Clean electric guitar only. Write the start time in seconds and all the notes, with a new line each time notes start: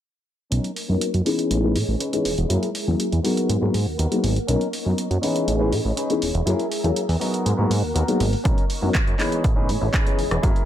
0.51 C#4 D#4 A#4
0.88 muted clean electric guitar stroke
1.00 muted clean electric guitar stroke
1.13 muted clean electric guitar stroke
1.25 C#4 D#4 G#4 B4
1.62 C#4 D#4 G#4 B4
1.87 muted clean electric guitar stroke
1.99 C#4 D#4 G#4 B4
2.49 E4 G#4 A#4
2.86 muted clean electric guitar stroke
2.99 muted clean electric guitar stroke
3.11 muted clean electric guitar stroke
3.23 B3 F#4 A#4
3.61 B3 F#4 A#4
3.86 muted clean electric guitar stroke
3.98 B3 F#4 A#4
4.47 C#4 D#4 A#4
4.85 muted clean electric guitar stroke
4.97 muted clean electric guitar stroke
5.09 muted clean electric guitar stroke
5.22 C#4 D#4 G#4 B4
5.59 C#4 D#4 G#4 B4
5.84 muted clean electric guitar stroke
5.96 C#4 D#4 G#4 B4
6.46 E4 G#4 A#4
6.83 muted clean electric guitar stroke
6.95 muted clean electric guitar stroke
7.08 muted clean electric guitar stroke
7.20 B3 F#4 A#4
7.57 B3 F#4 A#4
7.82 muted clean electric guitar stroke
7.94 B3 F#4 A#4
8.44 C#4 D#4 A#4
8.81 muted clean electric guitar stroke
8.93 muted clean electric guitar stroke
9.06 muted clean electric guitar stroke
9.18 C#4 D#4 G#4 B4
9.56 C#4 D#4 G#4 B4
9.81 muted clean electric guitar stroke
9.93 C#4 D#4 G#4 B4
10.42 E4 G#4 A#4